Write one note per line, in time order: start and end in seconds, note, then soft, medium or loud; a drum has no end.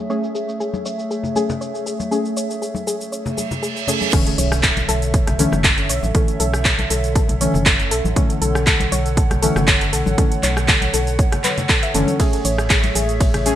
0.00 4.09 A3 medium
0.00 4.09 G#4 medium
0.00 4.09 C#5 medium
0.00 4.09 E5 medium
0.09 1.33 A3 medium
0.09 1.33 C#4 medium
0.09 1.33 G#4 medium
0.09 0.21 C#5 medium
0.09 cabasa soft
0.24 cabasa soft
0.35 0.43 G#4 medium
0.35 cabasa medium
0.49 cabasa soft
0.60 0.65 G#4 loud
0.60 cabasa soft
0.74 high conga medium
0.74 cabasa soft
0.85 0.97 C#5 medium
0.85 cabasa medium
0.99 cabasa soft
1.11 1.18 G#4 medium
1.11 cabasa soft
1.23 low conga medium
1.23 cabasa soft
1.35 2.08 A3 medium
1.35 2.09 C#4 medium
1.35 1.40 G#4 loud
1.35 2.09 G#4 medium
1.35 high conga medium
1.35 cabasa medium
1.50 low conga medium
1.50 cabasa soft
1.61 1.73 C#5 medium
1.61 cabasa soft
1.75 cabasa soft
1.86 1.94 G#4 medium
1.86 cabasa medium
2.00 high conga medium
2.00 cabasa soft
2.11 3.35 A3 medium
2.11 3.35 C#4 medium
2.11 2.16 G#4 medium
2.11 3.35 G#4 medium
2.11 cabasa soft
2.25 cabasa soft
2.37 2.48 C#5 medium
2.37 cabasa medium
2.51 cabasa soft
2.62 2.69 G#4 medium
2.62 cabasa soft
2.75 high conga medium
2.75 cabasa soft
2.87 2.92 G#4 loud
2.87 cabasa medium
3.01 cabasa soft
3.12 3.24 C#5 medium
3.12 reverse cymbal medium
3.12 cabasa soft
3.26 low conga medium
3.26 cabasa soft
3.37 3.45 G#4 medium
3.37 high conga medium
3.37 cabasa medium
3.51 low conga medium
3.51 cabasa soft
3.63 3.67 G#4 loud
3.63 cabasa soft
3.77 cabasa soft
3.87 4.10 A3 medium
3.87 4.10 C#4 medium
3.87 4.10 G#4 medium
3.87 3.99 C#5 medium
3.87 low conga medium
3.87 cabasa medium
4.01 high conga medium
4.01 cabasa soft
4.13 5.36 D3 medium
4.13 12.16 D3 medium
4.13 5.36 E3 medium
4.13 5.36 A3 medium
4.13 5.36 C#4 medium
4.13 4.18 A4 loud
4.13 12.16 A4 medium
4.13 13.55 C#5 medium
4.13 8.12 E5 medium
4.13 kick loud
4.13 closed hi-hat medium
4.13 crash loud
4.13 impact medium
4.13 cabasa soft
4.27 closed hi-hat medium
4.27 cabasa soft
4.38 4.84 B1 loud
4.38 4.50 C#5 medium
4.38 open hi-hat loud
4.38 cabasa medium
4.52 cross-stick medium
4.52 cabasa soft
4.63 4.71 A4 medium
4.63 kick loud
4.63 clap loud
4.63 closed hi-hat medium
4.63 cabasa soft
4.77 closed hi-hat medium
4.77 high conga loud
4.77 cabasa soft
4.89 5.22 B1 medium
4.89 4.93 A4 loud
4.89 open hi-hat loud
4.89 cabasa medium
5.02 closed hi-hat soft
5.02 cabasa soft
5.14 5.25 C#5 medium
5.14 kick loud
5.14 closed hi-hat medium
5.14 cabasa soft
5.27 5.46 B1 medium
5.27 cross-stick medium
5.27 closed hi-hat medium
5.27 low conga medium
5.27 cabasa soft
5.39 6.12 D3 medium
5.39 6.12 E3 medium
5.39 6.12 A3 medium
5.39 6.12 C#4 medium
5.39 5.47 A4 medium
5.39 open hi-hat loud
5.39 high conga medium
5.39 cabasa medium
5.52 5.91 F#1 medium
5.52 cross-stick medium
5.52 low conga medium
5.52 cabasa soft
5.64 5.69 A4 loud
5.64 kick loud
5.64 clap loud
5.64 closed hi-hat medium
5.64 cabasa soft
5.78 closed hi-hat medium
5.78 cabasa soft
5.89 6.00 B1 medium
5.89 6.01 C#5 medium
5.89 open hi-hat loud
5.89 cabasa medium
6.03 6.12 A1 medium
6.03 high conga loud
6.03 cabasa soft
6.14 7.38 D3 medium
6.14 7.38 E3 medium
6.14 7.38 A3 medium
6.14 7.38 C#4 medium
6.14 6.22 A4 medium
6.14 kick loud
6.14 closed hi-hat medium
6.14 cabasa soft
6.28 closed hi-hat medium
6.28 cabasa soft
6.40 6.86 B1 loud
6.40 6.45 A4 loud
6.40 open hi-hat loud
6.40 cabasa medium
6.54 cross-stick medium
6.54 cabasa soft
6.65 6.77 C#5 medium
6.65 kick loud
6.65 clap loud
6.65 closed hi-hat medium
6.65 cabasa soft
6.79 closed hi-hat medium
6.79 high conga loud
6.79 cabasa soft
6.90 7.24 B1 loud
6.90 6.98 A4 medium
6.90 open hi-hat loud
6.90 cabasa medium
7.04 closed hi-hat soft
7.04 cabasa soft
7.16 7.20 A4 loud
7.16 kick loud
7.16 closed hi-hat medium
7.16 cabasa soft
7.29 7.48 B1 medium
7.29 closed hi-hat medium
7.29 low conga medium
7.29 cabasa soft
7.40 8.13 D3 medium
7.40 8.14 E3 medium
7.40 8.14 A3 medium
7.40 8.14 C#4 loud
7.40 7.52 C#5 medium
7.40 open hi-hat loud
7.40 high conga medium
7.40 cabasa medium
7.54 7.93 F#1 medium
7.54 low conga medium
7.54 cabasa soft
7.66 7.74 A4 medium
7.66 kick loud
7.66 clap loud
7.66 closed hi-hat medium
7.66 cabasa soft
7.80 closed hi-hat medium
7.80 cabasa soft
7.91 8.02 B1 medium
7.91 7.96 A4 loud
7.91 open hi-hat loud
7.91 cabasa medium
8.05 8.14 A1 medium
8.05 high conga loud
8.05 cabasa soft
8.16 9.39 D3 medium
8.16 9.40 E3 medium
8.16 9.40 A3 medium
8.16 9.40 C#4 medium
8.16 8.28 C#5 medium
8.16 12.16 F#5 medium
8.16 kick loud
8.16 closed hi-hat medium
8.16 cabasa soft
8.30 closed hi-hat soft
8.30 cabasa soft
8.42 8.88 B1 loud
8.42 8.49 A4 medium
8.42 open hi-hat loud
8.42 cabasa medium
8.55 cross-stick medium
8.55 cabasa soft
8.67 8.71 A4 loud
8.67 kick loud
8.67 clap loud
8.67 closed hi-hat medium
8.67 cabasa soft
8.80 closed hi-hat medium
8.80 high conga loud
8.80 cabasa soft
8.92 9.26 B1 medium
8.92 9.04 C#5 medium
8.92 open hi-hat loud
8.92 cabasa medium
9.06 closed hi-hat soft
9.06 cabasa soft
9.17 9.25 A4 medium
9.17 kick loud
9.17 closed hi-hat medium
9.17 cabasa soft
9.30 9.50 B1 medium
9.30 cross-stick medium
9.30 closed hi-hat medium
9.30 low conga medium
9.30 cabasa soft
9.42 10.15 D3 medium
9.42 10.15 E3 medium
9.42 10.15 A3 medium
9.42 10.16 C#4 loud
9.42 9.47 A4 loud
9.42 open hi-hat loud
9.42 high conga medium
9.42 cabasa medium
9.56 9.94 F#1 medium
9.56 cross-stick medium
9.56 low conga loud
9.56 cabasa soft
9.68 9.79 C#5 medium
9.68 kick loud
9.68 clap loud
9.68 closed hi-hat medium
9.68 cabasa soft
9.81 closed hi-hat medium
9.81 cabasa soft
9.93 10.03 B1 loud
9.93 10.01 A4 medium
9.93 open hi-hat loud
9.93 cabasa medium
10.06 10.15 A1 medium
10.06 high conga loud
10.06 cabasa soft
10.18 11.41 D3 medium
10.18 11.41 E3 medium
10.18 11.41 A3 medium
10.18 11.42 C#4 medium
10.18 10.23 A4 loud
10.18 kick loud
10.18 closed hi-hat medium
10.18 cabasa soft
10.32 closed hi-hat soft
10.32 cabasa soft
10.43 10.89 B1 loud
10.43 10.55 C#5 medium
10.43 clap medium
10.43 open hi-hat loud
10.43 cabasa medium
10.57 cross-stick medium
10.57 cabasa soft
10.68 10.76 A4 medium
10.68 kick loud
10.68 clap loud
10.68 closed hi-hat medium
10.68 cabasa soft
10.82 closed hi-hat medium
10.82 high conga medium
10.82 cabasa soft
10.94 11.27 B1 medium
10.94 10.98 A4 loud
10.94 open hi-hat loud
10.94 cabasa medium
11.07 closed hi-hat soft
11.07 cabasa soft
11.19 11.31 C#5 medium
11.19 kick loud
11.19 closed hi-hat medium
11.19 cabasa soft
11.32 cross-stick medium
11.32 closed hi-hat medium
11.32 low conga medium
11.32 cabasa soft
11.44 11.56 B4 medium
11.44 clap medium
11.44 open hi-hat loud
11.44 high conga medium
11.44 cabasa medium
11.58 closed hi-hat soft
11.58 low conga medium
11.58 cabasa soft
11.69 11.77 A4 loud
11.69 kick loud
11.69 clap loud
11.69 closed hi-hat medium
11.69 cabasa soft
11.83 11.90 E5 medium
11.83 closed hi-hat medium
11.83 cabasa soft
11.94 12.05 F#1 loud
11.94 12.17 D3 medium
11.94 12.17 E3 medium
11.94 12.17 A3 medium
11.94 12.17 C#4 loud
11.94 12.02 A4 medium
11.94 open hi-hat loud
11.94 cabasa medium
12.07 closed hi-hat soft
12.07 high conga loud
12.07 cabasa soft
12.20 13.43 A3 medium
12.20 13.55 A3 medium
12.20 13.43 C#4 medium
12.20 13.55 G#4 medium
12.20 12.24 G#4 loud
12.20 13.43 G#4 medium
12.20 13.55 E5 medium
12.20 kick loud
12.20 closed hi-hat medium
12.20 ride medium
12.20 cabasa soft
12.33 closed hi-hat medium
12.33 cabasa soft
12.45 12.91 A1 loud
12.45 12.57 C#5 medium
12.45 open hi-hat loud
12.45 cabasa medium
12.58 cross-stick medium
12.58 cabasa soft
12.70 12.78 G#4 medium
12.70 kick loud
12.70 clap loud
12.70 closed hi-hat medium
12.70 ride medium
12.70 cabasa soft
12.84 closed hi-hat medium
12.84 high conga loud
12.84 cabasa soft
12.95 13.29 A1 medium
12.95 13.00 G#4 loud
12.95 open hi-hat loud
12.95 cabasa medium
13.09 closed hi-hat soft
13.09 cabasa soft
13.21 13.32 C#5 medium
13.21 kick loud
13.21 closed hi-hat medium
13.21 ride medium
13.21 cabasa soft
13.34 13.53 A1 medium
13.34 cross-stick medium
13.34 closed hi-hat medium
13.34 low conga medium
13.34 cabasa soft
13.45 13.55 A3 medium
13.45 13.55 C#4 medium
13.45 13.54 G#4 medium
13.45 13.55 G#4 loud
13.45 open hi-hat loud
13.45 high conga medium
13.45 cabasa medium